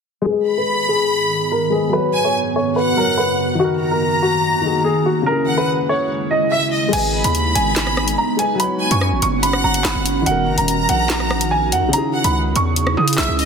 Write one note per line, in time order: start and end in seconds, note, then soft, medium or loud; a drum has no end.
0.22 1.67 G#3 medium
0.22 1.68 G#4 medium
0.26 1.91 G#2 medium
0.26 1.91 D#3 medium
0.26 3.56 B3 medium
0.26 1.91 G#4 medium
0.26 0.56 G#4 loud
0.31 1.72 D#5 medium
0.47 1.89 B5 medium
0.58 0.87 B4 medium
0.88 1.47 G#4 medium
1.51 1.71 A#4 medium
1.70 1.92 G#3 soft
1.70 1.93 G#4 soft
1.70 1.92 G#4 medium
1.70 1.93 B4 soft
1.74 1.94 D#5 medium
1.88 2.93 F#3 medium
1.88 2.94 F#4 medium
1.93 3.58 F#2 medium
1.93 3.58 C#3 medium
1.93 5.23 F#4 medium
1.93 2.22 B4 loud
1.93 2.96 B4 medium
1.98 2.97 C#5 medium
2.14 2.34 G#5 medium
2.25 2.54 C#5 medium
2.56 2.75 C#5 medium
2.76 2.96 B4 medium
2.76 3.56 F#5 medium
2.95 3.59 F#3 medium
2.95 3.59 F#4 soft
2.95 3.17 A#4 medium
2.95 3.60 B4 soft
2.99 3.61 C#5 medium
3.18 3.57 B4 medium
3.55 4.59 D#3 medium
3.55 4.61 D#4 medium
3.60 5.25 D#2 medium
3.60 5.25 D#3 medium
3.60 5.25 A#3 medium
3.60 3.89 F#4 loud
3.60 4.62 F#4 medium
3.64 4.64 A#4 medium
3.80 5.22 A#5 medium
3.91 4.20 A#4 medium
4.22 4.81 F#4 medium
4.61 5.25 D#3 soft
4.61 5.26 D#4 soft
4.61 5.27 F#4 soft
4.66 5.27 G#4 medium
4.84 5.04 G#4 medium
5.06 5.25 F#4 medium
5.22 6.87 C#3 medium
5.22 6.89 C#4 medium
5.26 6.91 C#2 medium
5.26 6.91 C#3 medium
5.26 6.91 G#3 medium
5.26 6.91 E4 medium
5.26 5.56 A#4 loud
5.31 6.90 G#4 medium
5.47 5.67 F#5 medium
5.58 5.87 B4 medium
5.89 6.28 C#5 medium
6.31 6.50 D#5 medium
6.51 6.71 E5 medium
6.72 6.92 D#5 medium
6.88 8.34 G#3 medium
6.88 8.35 G#4 medium
6.93 7.23 G#1 loud
6.93 8.58 G#3 medium
6.93 10.23 B3 medium
6.93 8.58 D#4 medium
6.93 8.37 B4 medium
6.93 7.22 G#5 loud
6.93 closed hi-hat medium
6.93 crash loud
6.98 8.38 D#5 medium
7.14 8.56 B5 medium
7.24 7.54 D#2 loud
7.24 7.54 B5 medium
7.24 closed hi-hat medium
7.35 closed hi-hat medium
7.55 8.15 G#1 loud
7.55 8.14 G#5 medium
7.55 closed hi-hat medium
7.76 snare loud
7.76 clap medium
7.76 closed hi-hat medium
7.87 cross-stick medium
7.97 cross-stick medium
8.08 closed hi-hat medium
8.18 8.37 A#5 medium
8.37 8.59 G#3 medium
8.37 8.59 G#4 soft
8.37 8.60 B4 soft
8.37 8.58 G#5 medium
8.37 closed hi-hat medium
8.41 8.61 D#5 medium
8.55 10.21 F#3 medium
8.55 10.22 F#4 medium
8.60 10.25 C#4 medium
8.60 10.25 F#4 medium
8.60 10.24 B4 medium
8.60 8.89 B5 loud
8.60 closed hi-hat medium
8.64 10.25 C#5 medium
8.81 9.00 G#5 medium
8.91 9.13 F#2 loud
8.91 9.20 C#6 medium
8.91 closed hi-hat medium
9.01 cross-stick medium
9.12 9.22 G#1 loud
9.22 9.62 F#1 loud
9.22 9.42 C#6 medium
9.22 closed hi-hat medium
9.43 10.22 F#5 loud
9.43 9.62 B5 medium
9.43 closed hi-hat medium
9.53 cross-stick medium
9.64 9.84 F#1 loud
9.64 9.83 A#5 medium
9.74 closed hi-hat medium
9.84 9.94 F#1 loud
9.84 10.24 B5 medium
9.84 snare loud
9.84 clap loud
9.84 closed hi-hat medium
9.95 10.18 F#1 loud
10.06 closed hi-hat medium
10.16 10.26 G#1 loud
10.22 11.87 D#3 medium
10.22 11.89 D#4 medium
10.26 10.49 D#1 loud
10.26 11.91 D#3 medium
10.26 11.91 D#4 medium
10.26 11.91 F#4 medium
10.26 11.91 A#4 medium
10.26 10.56 F#5 loud
10.26 closed hi-hat medium
10.31 11.92 A#4 medium
10.47 10.57 F#1 loud
10.47 11.89 A#5 medium
10.58 10.88 D#1 loud
10.58 10.87 A#5 medium
10.58 closed hi-hat medium
10.68 closed hi-hat medium
10.89 11.74 A#1 loud
10.89 11.48 F#5 medium
10.89 closed hi-hat medium
11.10 snare loud
11.10 clap medium
11.10 closed hi-hat medium
11.20 cross-stick medium
11.31 cross-stick loud
11.41 closed hi-hat medium
11.51 11.71 G#5 medium
11.72 11.84 F#2 loud
11.72 11.92 F#5 medium
11.72 closed hi-hat medium
11.83 11.93 A#1 loud
11.88 13.45 C#3 medium
11.88 13.45 C#4 medium
11.93 13.45 C#3 medium
11.93 13.45 C#4 medium
11.93 13.45 E4 medium
11.93 13.45 G#4 medium
11.93 12.23 A#5 loud
11.93 closed hi-hat medium
11.98 13.45 G#4 medium
12.14 12.34 F#5 medium
12.24 12.54 C#2 loud
12.24 12.54 B5 medium
12.24 closed hi-hat medium
12.56 12.96 E2 loud
12.56 12.95 C#6 medium
12.56 closed hi-hat medium
12.76 closed hi-hat medium
12.87 cross-stick medium
12.97 13.17 C#3 loud
12.97 13.17 D#6 medium
13.08 closed hi-hat medium
13.13 closed hi-hat medium
13.18 13.28 B1 loud
13.18 13.38 E5 medium
13.18 13.38 E6 medium
13.18 snare loud
13.18 clap loud
13.18 closed hi-hat medium
13.23 closed hi-hat soft
13.28 13.45 C#2 loud
13.39 13.45 D#5 medium
13.39 open hi-hat medium